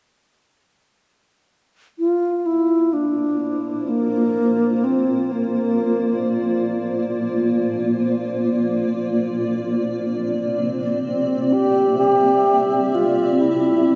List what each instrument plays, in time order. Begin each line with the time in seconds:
1.99 ambient pad A#3, alto flute F4
2.46 alto flute E4
2.82 ambient pad C5
2.93 alto flute D4
3.08 ambient pad F4
3.89 alto flute A#3
4.84 alto flute C4
5.17 ambient pad D5
5.33 alto flute A#3
9.62 ambient pad C4
10.58 ambient pad G4
11.00 alto flute C4, ambient pad E5
11.53 alto flute G4
11.98 alto flute G4
12.95 alto flute F4
13.41 alto flute E4